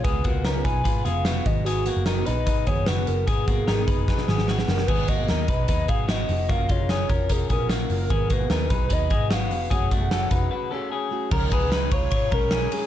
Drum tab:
CC |----------------|----------------|----------------|x---------------|
RD |----------------|----------------|----------------|----------------|
HH |x-x-x-x-x-x-x-x-|x-x-x-x-x-x-x-x-|x-x-x-x---------|--x-x-x-x-x-x-o-|
SD |----o-------o---|----o-------o---|----o---oooooooo|----o-------o---|
BD |o-o---o-o-----o-|--------o-o-----|o-o---o-o-------|o-o---o-o-o-----|

CC |----------------|----------------|----------------|x---------------|
RD |----------------|----------------|----------------|--x-x-x-x-x-x-x-|
HH |x-x-x-x-x-x-x-o-|x-x-x-x-x-x-x-o-|x-x-x-x---------|--------------o-|
SD |----o-------o---|----o-------o---|----o-----------|----o-------o---|
BD |o-o---o-o-o-----|o-o---o-o-o-----|o-o---o---------|o-o---o-o-o-----|